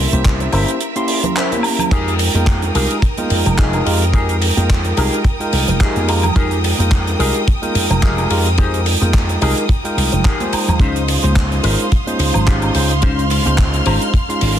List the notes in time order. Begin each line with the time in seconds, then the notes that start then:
Already playing: A#4 E5
0.12 C2 A#3 C#4 E4 G4 C5, muted clean electric guitar stroke, closed hi-hat, high conga
0.25 muted clean electric guitar stroke, kick, clap, closed hi-hat
0.40 muted clean electric guitar stroke, closed hi-hat, high bongo
0.52 G1 A#3 C#4 E4 G4 A#4 C5, open hi-hat, high woodblock
0.68 closed hi-hat, high bongo
0.81 closed hi-hat
0.96 A#3 C#4 E4 G4 C6, muted clean electric guitar stroke, closed hi-hat
1.08 open hi-hat
1.23 muted clean electric guitar stroke, closed hi-hat, low conga
1.36 C#4 E4 A#4 C5, clap, closed hi-hat
1.51 A#3 C#4 E4 G4, closed hi-hat, high conga
1.63 open hi-hat, high woodblock
1.79 closed hi-hat, low conga, high woodblock
1.91 F2 G#3 D#4 F4 G4 G#4 A#4 G5 D#6, kick, closed hi-hat, ride, crash
2.08 closed hi-hat
2.19 open hi-hat, ride
2.34 F2 G#3 D#4 F4 A#4 G5, muted clean electric guitar stroke, closed hi-hat, high conga
2.47 muted clean electric guitar stroke, kick, clap, closed hi-hat, ride
2.62 muted clean electric guitar stroke, closed hi-hat, high bongo
2.74 C2 G#3 D#4 F4 G4 G#4 A#4, open hi-hat, ride
2.91 closed hi-hat, high bongo
3.02 kick, closed hi-hat, ride
3.17 G#3 D#4 F4 A#4 G5, muted clean electric guitar stroke, closed hi-hat, high conga
3.30 F2, open hi-hat, ride
3.46 F1, muted clean electric guitar stroke, closed hi-hat, low conga, high woodblock
3.58 G#3 D#4 F4 G4 G#4 A#4, kick, clap, closed hi-hat, ride
3.73 closed hi-hat, high bongo, high woodblock
3.86 F2 G#3 D#4 F4 G4 A#4, open hi-hat, ride
4.02 closed hi-hat
4.13 G#3 D#4 F4 G4 G#4 A#4 G5, kick, closed hi-hat, ride
4.29 closed hi-hat
4.42 open hi-hat, ride, high bongo
4.56 F2 G#3 D#4 F4 A#4 G5, muted clean electric guitar stroke, closed hi-hat, high conga
4.69 muted clean electric guitar stroke, kick, clap, closed hi-hat, ride
4.84 muted clean electric guitar stroke, closed hi-hat, high bongo
4.97 C2 G#3 D#4 F4 G4 G#4 A#4, open hi-hat, ride, high woodblock
5.13 closed hi-hat, high bongo
5.24 kick, closed hi-hat, ride
5.40 G#3 D#4 F4 A#4 G5, muted clean electric guitar stroke, closed hi-hat
5.53 C2, open hi-hat, ride
5.68 F1, muted clean electric guitar stroke, closed hi-hat, low conga
5.80 G#3 D#4 F4 G4 G#4 A#4, kick, clap, closed hi-hat, ride
5.96 F2, closed hi-hat, high conga
6.08 G#3 D#4 F4 G4 A#4, open hi-hat, ride, high woodblock
6.23 closed hi-hat, low conga, high woodblock
6.36 F2 G#3 D#4 F4 G4 G#4 A#4 G5, kick, closed hi-hat, ride
6.51 closed hi-hat
6.64 open hi-hat, ride
6.78 F2 G#3 D#4 F4 A#4 G5, muted clean electric guitar stroke, closed hi-hat, high conga
6.91 kick, clap, closed hi-hat
7.06 muted clean electric guitar stroke, closed hi-hat, high bongo
7.19 C2 G#3 D#4 F4 G4 G#4 A#4, open hi-hat, ride
7.34 closed hi-hat, high bongo
7.48 kick, closed hi-hat, ride
7.62 G#3 D#4 F4 A#4 G5, muted clean electric guitar stroke, closed hi-hat, high conga
7.75 F2, open hi-hat, ride
7.90 F1, muted clean electric guitar stroke, closed hi-hat, low conga, high woodblock
8.02 G#3 D#4 F4 G4 G#4 A#4, kick, clap, closed hi-hat, ride
8.17 closed hi-hat, high bongo, high woodblock
8.30 F2 G#3 D#4 F4 G4 A#4, open hi-hat, ride
8.46 closed hi-hat
8.58 G#3 D#4 F4 G4 G#4 A#4 C5 G5, kick, closed hi-hat, ride
8.74 closed hi-hat
8.86 open hi-hat, ride, high bongo
9.01 F2 G#3 D#4 F4 A#4 G5, muted clean electric guitar stroke, closed hi-hat, high conga
9.14 muted clean electric guitar stroke, kick, clap, closed hi-hat, ride
9.29 muted clean electric guitar stroke, closed hi-hat, high bongo
9.41 C2 G#3 D#4 F4 G4 G#4 A#4, open hi-hat, ride, high woodblock
9.57 closed hi-hat, high bongo
9.69 kick, closed hi-hat, ride
9.84 G#3 D#4 F4 A#4 G5, muted clean electric guitar stroke, closed hi-hat
9.97 C2, open hi-hat, ride
10.12 F1, muted clean electric guitar stroke, closed hi-hat, low conga
10.24 D#4 G4 G#4 A#4, kick, clap, closed hi-hat, ride
10.40 G#3 D#4 F4 C5 G5, closed hi-hat, high conga
10.53 muted slap bass stroke, open hi-hat, ride, high woodblock
10.68 D#2, closed hi-hat, low conga, high woodblock
10.79 C#2 G#3 C#4 D#4 F4 C5 F5 C6, kick, closed hi-hat, ride
10.96 closed hi-hat
11.08 open hi-hat, ride
11.23 C#2 G#3 C#4 D#4 F4 C5, muted clean electric guitar stroke, closed hi-hat, high conga
11.36 muted clean electric guitar stroke, kick, clap, closed hi-hat, ride
11.51 muted clean electric guitar stroke, closed hi-hat, high bongo
11.63 G#1 G#3 C#4 D#4 F4 A#4 C5, open hi-hat, ride
11.79 closed hi-hat, high bongo
11.92 kick, closed hi-hat, ride
12.06 G#3 C#4 D#4 F4 C5, muted clean electric guitar stroke, closed hi-hat, high conga
12.19 C#2, open hi-hat, ride
12.34 G#1, muted clean electric guitar stroke, closed hi-hat, low conga, high woodblock
12.47 G#3 C#4 D#4 F4 G4 C5, kick, clap, closed hi-hat, ride
12.62 closed hi-hat, high bongo, high woodblock
12.75 C#2 G#3 C#4 D#4 F4 C5, open hi-hat, ride
12.91 closed hi-hat
13.02 G#3 C#4 D#4 F4 C5 F6, kick, closed hi-hat, ride
13.19 closed hi-hat
13.30 open hi-hat, ride, high bongo
13.45 C#2 G#3 C#4 D#4 F4 C5, muted clean electric guitar stroke, closed hi-hat, high conga
13.58 muted clean electric guitar stroke, kick, clap, closed hi-hat, ride
13.73 muted clean electric guitar stroke, closed hi-hat, high bongo
13.86 G#1 G#3 C#4 D#4 F4 C5, open hi-hat, ride, high woodblock
14.01 closed hi-hat, high bongo
14.14 kick, closed hi-hat, ride
14.29 G#3 C#4 D#4 F4 C6, muted clean electric guitar stroke, closed hi-hat
14.41 G#1, open hi-hat, ride